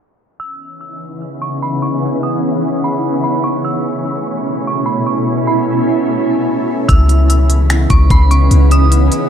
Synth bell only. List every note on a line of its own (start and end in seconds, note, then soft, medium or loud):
0.40 0.78 E6 medium
1.42 1.61 C#6 medium
1.62 1.82 B5 medium
1.82 2.02 C#6 medium
2.23 2.80 D#6 medium
2.84 3.22 B5 medium
3.24 3.43 B5 medium
3.44 3.63 C#6 medium
3.65 4.03 E6 loud
4.67 4.86 C#6 medium
4.86 5.05 B5 medium
5.06 5.26 C#6 medium
5.47 6.04 B5 medium
6.89 7.27 E6 medium
7.90 8.09 C#6 medium
8.11 8.30 B5 medium
8.31 8.50 C#6 medium
8.72 9.29 D#6 medium